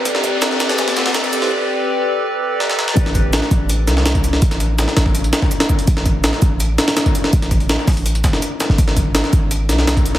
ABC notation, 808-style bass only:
X:1
M:4/4
L:1/16
Q:1/4=165
K:Am
V:1 name="808-style bass" clef=bass
z16 | z16 | A,,,4- A,,, z A,,,4 C,,6 | A,,,4- A,,, z A,,,4 z6 |
A,,,4- A,,, z A,,,4 z6 | A,,,4- A,,, z A,,,4 z4 z G,,, | ^G,,,4- G,,, z G,,,4 B,,,6 |]